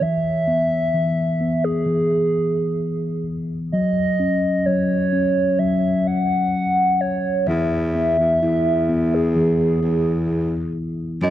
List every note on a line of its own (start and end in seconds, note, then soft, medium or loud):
0.01 0.93 E3 medium
0.01 1.66 E5 loud
0.47 1.39 B3 soft
0.94 1.85 E3 soft
1.41 3.22 B3 soft
1.64 3.26 G#4 medium
1.86 3.68 E3 soft
3.72 4.66 F#3 medium
3.72 4.67 D#5 medium
4.20 5.11 C#4 soft
4.66 5.58 F#3 soft
4.66 5.60 C#5 medium
5.13 6.97 C#4 soft
5.59 7.44 F#3 soft
5.59 6.09 E5 medium
6.07 7.02 F#5 medium
7.01 7.47 C#5 medium
7.47 8.15 E2 medium
7.47 9.35 E3 soft
7.47 9.16 E5 loud
7.95 8.88 B3 soft
8.19 8.41 E2 medium
8.42 9.79 E2 medium
8.42 10.25 E4 soft
8.89 10.71 B3 soft
9.14 10.76 G#4 medium
9.36 11.18 E3 soft
9.82 10.71 E2 medium
11.21 11.30 F#2 medium
11.21 11.30 F#3 medium
11.21 11.30 D#5 medium